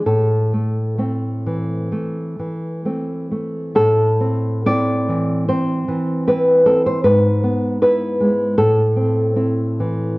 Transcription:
\new Staff \with { instrumentName = "Nylon-string guitar" } { \time 4/4 \key a \minor \tempo 4 = 70 << { a'2. r4 | a'4 d''4 c''4 b'8 a'16 c''16 | b'4 b'4 a'2 | } \\ { a,8 a8 <a c'>8 e8 a8 e8 <a c'>8 a8 | a,8 c'8 <c' e'>8 e8 c'8 e8 <c' e'>8 c'8 | gis,8 b8 <b e'>8 gis8 a,8 c'8 <c' e'>8 e8 | } >> }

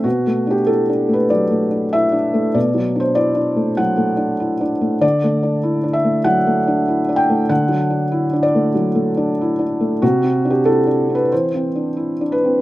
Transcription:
\new Staff \with { instrumentName = "Felt piano" } { \time 4/4 \key d \mixolydian \tempo 4 = 96 << { fis'8. g'16 a'8. b'16 d''4 e''4 | d''8. c''16 d''4 fis''4. r8 | d''4. e''8 fis''4. g''8 | fis''4. d''2~ d''8 |
fis'8. g'16 a'8. b'16 c''4. b'8 | } \\ { \tuplet 3/2 { b,8 a8 d'8 e'8 d'8 a8 fis8 a8 d'8 e'8 d'8 a8 } | \tuplet 3/2 { b,8 fis8 d'8 e'8 d'8 a8 fis8 a8 d'8 e'8 d'8 a8 } | \tuplet 3/2 { d8 a8 d'8 e'8 d'8 a8 fis8 a8 d'8 e'8 d'8 a8 } | \tuplet 3/2 { d8 fis8 d'8 e'8 d'8 a8 fis8 a8 d'8 e'8 d'8 a8 } |
\tuplet 3/2 { c8 c'8 d'8 e'8 d'8 c'8 e8 c'8 d'8 e'8 d'8 c'8 } | } >> }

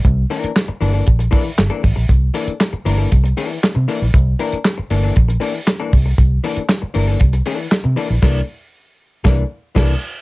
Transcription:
<<
  \new Staff \with { instrumentName = "Hollow-body jazz guitar" } { \time 4/4 \key c \mixolydian \tempo 4 = 117 r8 <e bes d' bes'>8 r8 <e bes d' a'>16 <e bes d' a'>16 r8 <e bes d' a'>16 r8 <e bes d' a'>16 r8 | r8 <e bes d' a'>16 r8. <e bes d' bes'>16 <e bes d' a'>16 r8 <e bes d' a'>8 r8 <e bes d' a'>16 r16 | r8 <e bes d' bes'>16 r8. <e bes d' a'>16 <e bes d' a'>16 r8 <e bes d' a'>16 r8 <e bes d' a'>16 r8 | r8 <e bes d' a'>16 r8. <e bes d' bes'>16 <e bes d' a'>16 r8 <e bes d' a'>8 r8 <e bes d' a'>16 r16 |
<e bes d' a'>8 r4. <e bes d' a'>8 r8 <e bes d' a'>8 r8 | }
  \new Staff \with { instrumentName = "Fingered electric bass" } { \clef bass \time 4/4 \key c \mixolydian c,8 r4 g,,8 bes,,8 r8 g,,16 r16 a,,16 bes,,16 | c,8 r4 g,,8 c,8 r8. c16 r16 bes,,16 | c,8 r4 g,,8 bes,,8 r4 c,8 | c,8 r4 g,,8 c,8 r8. c16 r16 bes,,16 |
c,8 r4. c,8 r8 c,8 r8 | }
  \new DrumStaff \with { instrumentName = "Drums" } \drummode { \time 4/4 <hh bd>8 hho16 hh16 <hc hh sn>8 hho8 <hh bd>16 hh16 <hho bd>8 <hc hh sn>8 <hho bd>8 | <hh bd>8 hho16 hh16 <hc hh sn>8 hho8 <hh bd>16 hh16 hho8 <hc hh sn>8 hho8 | <hh bd>8 hho16 hh16 <hc hh sn>8 hho8 <hh bd>16 hh16 hho8 <hc hh sn>8 <hho bd>8 | <hh bd>8 hho16 hh16 <hc hh sn>8 hho8 <hh bd>16 hh16 hho8 <hc hh sn>8 hho8 |
<cymc bd sn>4 r4 <bd sn>4 <cymc bd sn>4 | }
>>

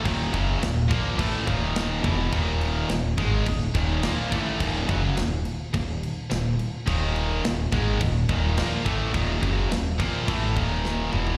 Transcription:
<<
  \new Staff \with { instrumentName = "Distorted electric guitar" } { \clef bass \time 4/4 \key ees \minor \tempo 4 = 106 <ees, bes, ees>8 <ges, des ges>8 <ees, bes,>8 <bes, f bes>8 <a, fes a>8 <ees, bes, ees>4 <fes, ces fes>8 | <ees, bes, ees>4 <ees, bes,>8 <aes, ees aes>8 <ees, bes,>8 <ees, bes, ees>8 <bes, f bes>8 <a, fes a>8 | <ees, bes, ees>8 <ges, des ges>8 <ees, bes,>8 r8 <ees, bes,>8 r8 <ees, bes,>8 r8 | <ees, bes, ees>4 <ees, bes,>8 <aes, ees aes>8 <ees, bes,>8 <ees, bes, ees>8 <bes, f bes>8 <a, fes a>8 |
<ees, bes, ees>8 <ges, des ges>8 <ees, bes,>8 <bes, f bes>8 <a, fes a>8 <ees, bes, ees>4 <fes, ces fes>8 | }
  \new Staff \with { instrumentName = "Upright bass" } { \clef bass \time 4/4 \key ees \minor ees,,8 ges,,8 ees,,8 bes,,8 a,,8 ees,,4 fes,,8 | ees,,4 ees,,8 aes,,8 ees,,8 ees,,8 bes,,8 a,,8 | ees,,8 ges,,8 ees,,8 r8 ees,,8 r8 ees,,8 r8 | ees,,4 ees,,8 aes,,8 ees,,8 ees,,8 bes,,8 a,,8 |
ees,,8 ges,,8 ees,,8 bes,,8 a,,8 ees,,4 fes,,8 | }
  \new DrumStaff \with { instrumentName = "Drums" } \drummode { \time 4/4 <cymc bd>8 <cymc bd>8 <cymc sn>8 <cymc bd>8 <cymc bd>8 <cymc bd>8 <cymc sn>8 <cymc bd>8 | <cymc bd>8 cymc8 <cymc sn>8 <cymc bd>8 <cymc bd>8 <cymc bd>8 <cymc sn>8 <cymc bd>8 | <cymc bd>8 <cymc bd>8 <cymc sn>8 cymc8 <cymc bd>8 cymc8 <cymc sn>8 cymc8 | <cymc bd>8 cymc8 <cymc sn>8 <cymc bd>8 <cymc bd>8 <cymc bd>8 <cymc sn>8 <cymc bd>8 |
<cymc bd>8 <cymc bd>8 <cymc sn>8 <cymc bd>8 <cymc bd>8 <cymc bd>8 sn8 toml16 tomfh16 | }
>>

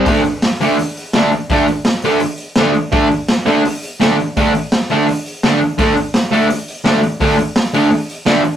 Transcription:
<<
  \new Staff \with { instrumentName = "Distorted electric guitar" } { \time 4/4 \key c \lydian \tempo 4 = 168 <d a d'>8 r4 <d a d'>8 r4 <d a d'>8 r8 | <d a d'>8 r4 <d a d'>8 r4 <d a d'>8 r8 | <d a d'>8 r4 <d a d'>8 r4 <d a d'>8 r8 | <d a d'>8 r4 <d a d'>8 r4 <d a d'>8 r8 |
<d a d'>8 r4 <d a d'>8 r4 <d a d'>8 r8 | <d a d'>8 r4 <d a d'>8 r4 <d a d'>8 r8 | }
  \new DrumStaff \with { instrumentName = "Drums" } \drummode { \time 4/4 <hho bd>8 hho8 <hho sn>8 hho8 hho8 hho8 <hho sn>8 hho8 | <hho bd>8 hho8 <hho sn>8 hho8 hho8 hho8 <hho sn>8 hho8 | <hho bd>8 hho8 <hho sn>8 hho8 hho8 hho8 <hho sn>8 hho8 | <hho bd>8 hho8 <hho sn>8 hho8 hho8 hho8 <hho sn>8 hho8 |
<hho bd>8 hho8 <hho sn>8 hho8 hho8 hho8 <hho sn>8 hho8 | <hho bd>8 hho8 <hho sn>8 hho8 hho8 hho8 <hho sn>8 hho8 | }
>>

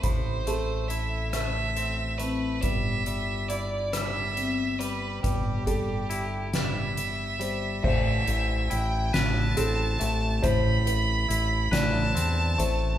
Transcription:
<<
  \new Staff \with { instrumentName = "Violin" } { \time 6/8 \key a \minor \tempo 4. = 46 c''4 e''8 e''4 b'8 | e''4 d''8 e''4 b'8 | g'4. e''4. | e''4 g''8 a''4. |
b''4. a''4. | }
  \new Staff \with { instrumentName = "Felt piano" } { \time 6/8 \key a \minor b''8 a'4 b'4 c'8 | b'4 d''4 c'4 | b'8 a'4 b'4 c''8 | c''4 r4 a'4 |
c''8 b'4 d''4 c''8 | }
  \new Staff \with { instrumentName = "Clean electric guitar" } { \time 6/8 \key a \minor <a, a c' e'>8 a8 e'8 a8 c'8 a8 | g8 g8 e'8 g4 g8 | g8 g8 e'8 g4 g8 | a,4 e'8 b'8 c'8 a8 |
a,4 e'8 b'8 c'8 a8 | }
  \new Staff \with { instrumentName = "Fingered electric bass" } { \clef bass \time 6/8 \key a \minor a,,2. | g,,2. | g,,2. | a,,8 a,,8 a,,8 a,,8 a,,8 a,,8 |
a,,4 a,,8 a,,8 e,8 a,,8 | }
  \new DrumStaff \with { instrumentName = "Drums" } \drummode { \time 6/8 <hh bd>8 hh8 hh8 <hh ss>8 hh8 hh8 | <hh bd>8 hh8 hh8 <hh ss>8 hh8 hh8 | <hh bd>8 <hh bd>8 hh8 <hh sn>8 hh8 hh8 | <cymc bd>8 hh8 hh8 <hh sn>8 hh8 hh8 |
<hh bd>8 hh8 hh8 <hh sn>8 hh8 hh8 | }
>>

